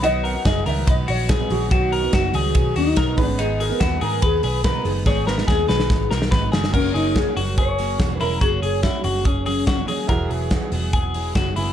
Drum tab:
CC |----------------|----------------|----------------|----------------|
RD |x---x---x---x---|x---x---x---x---|x---x---x---x---|----------------|
HH |p-o-p-o-p-o-p-o-|p-o-p-o-p-o---o-|p-o-p-o-p-o-p-o-|----------------|
SD |----o-------o---|----o-------o---|----o-------o---|o-ooo-ooo-ooo-oo|
BD |----o---o---o---|o---o---o---o-o-|----o---o---o---|o---o---o---o---|

CC |x---------------|----------------|----------------|
RD |----------------|----------------|----------------|
HH |--o-x-o-x-o-x-o-|x-o-x-o-x-o-x-o-|x-o-x-o-x-o-x-o-|
SD |----o-------o---|----o-------o---|----o-------o---|
BD |o---o---o---o---|o---o---o---o---|o---o---o---o---|